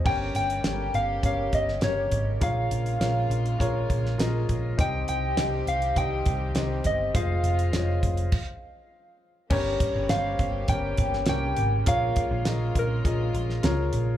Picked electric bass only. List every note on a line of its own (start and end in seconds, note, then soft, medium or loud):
0.06 0.30 G1 loud
0.35 0.59 G1 loud
0.64 0.89 G1 medium
0.94 1.18 G1 medium
1.23 1.48 G1 medium
1.53 1.77 G1 medium
1.82 2.06 G1 medium
2.12 2.36 G#1 medium
2.42 2.66 A#1 loud
2.71 2.96 A#1 medium
3.01 3.25 A#1 medium
3.30 3.54 A#1 medium
3.60 3.84 A#1 medium
3.90 4.14 A#1 medium
4.19 4.43 A#1 medium
4.49 4.73 A#1 medium
4.79 5.03 C2 loud
5.09 5.33 C2 medium
5.37 5.61 C2 medium
5.67 5.91 C2 medium
5.96 6.21 C2 loud
6.27 6.51 C2 loud
6.55 6.80 C2 medium
6.85 7.09 G1 medium
7.15 7.39 F1 loud
7.44 7.68 F1 loud
7.73 7.97 F1 loud
8.03 8.27 F1 medium
9.50 9.75 G1 loud
9.95 10.07 G1 medium
10.10 10.34 G1 loud
10.40 10.64 G1 medium
10.69 10.93 G1 loud
10.98 11.22 G1 loud
11.28 11.52 C2 medium
11.57 11.82 G#1 medium
11.87 12.11 A#1 loud
12.31 12.43 A#1 loud
12.46 12.70 A#1 medium
12.75 12.99 A#1 medium
13.05 13.29 A#1 loud
13.34 13.58 A#1 medium
13.64 13.88 C#2 medium
13.93 14.17 A#1 medium